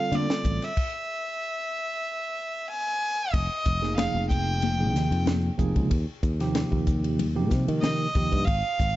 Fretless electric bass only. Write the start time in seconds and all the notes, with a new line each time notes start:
0.12 D3
0.45 A1
3.33 F1
3.66 F1
4.15 F1
4.94 D#2
5.11 F2
5.59 F1
5.76 C#2
5.90 D#2
6.23 D#2
6.72 D#2
7.51 C3
7.68 D#3
8.15 D#2
8.32 G2
8.47 G#1
8.80 G#1